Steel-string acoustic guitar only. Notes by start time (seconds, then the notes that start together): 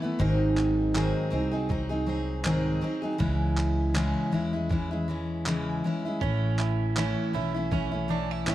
0.02 E3 A3 B3 E4
0.19 G#2 D#3 F#3 C4 D#4 G#4
0.94 G#2 D#3 F#3 C4 D#4 G#4
1.30 F#3 C4 D#4 G#4
1.52 F#3 C4 D#4 G#4
1.69 F#3 C4 D#4 G#4
1.89 F#3 C4 D#4 G#4
2.06 F#3 C4 D#4 G#4
2.43 G#2 D#3 F#3 C4 D#4 G#4
2.81 F#3 C4 D#4 G#4
3.02 F#3 C4 D#4 G#4
3.18 C#3 E3 G#3 C#4 E4
3.94 C#3 E3 G#3 C#4 E4
4.32 E3 G#3 C#4 E4
4.53 G#3 C#4 E4
4.69 E3 G#3 C#4 E4
4.91 G#3 C#4 E4
5.08 E3 G#3 C#4 E4
5.47 C#3 E3 G#3 C#4 E4
5.84 E3 G#3 C#4 E4
6.05 G#3 C#4 E4
6.21 A2 E3 A3 C#4 E4
6.96 A2 E3 A3 C#4 E4
7.33 E3 A3 C#4 E4
7.54 A3 C#4 E4
7.71 E3 A3 C#4 E4
7.91 A3 C#4 E4
8.08 E3 A3 C#4 E4
8.46 A2 E3 A3 C#4 E4